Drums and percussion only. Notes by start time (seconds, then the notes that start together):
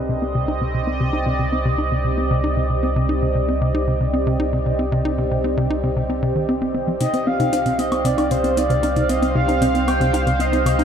7.01 closed hi-hat
7.14 closed hi-hat
7.40 closed hi-hat
7.53 closed hi-hat
7.66 closed hi-hat
7.79 closed hi-hat
7.92 closed hi-hat, low woodblock
8.05 closed hi-hat
8.18 closed hi-hat, low woodblock
8.31 closed hi-hat
8.44 closed hi-hat
8.57 closed hi-hat
8.70 closed hi-hat
8.83 closed hi-hat
8.96 closed hi-hat
9.09 closed hi-hat
9.23 closed hi-hat
9.49 closed hi-hat
9.62 closed hi-hat
9.75 closed hi-hat
9.88 closed hi-hat, low woodblock
10.01 closed hi-hat
10.14 closed hi-hat
10.27 closed hi-hat
10.40 closed hi-hat
10.53 closed hi-hat
10.66 closed hi-hat, low woodblock
10.79 closed hi-hat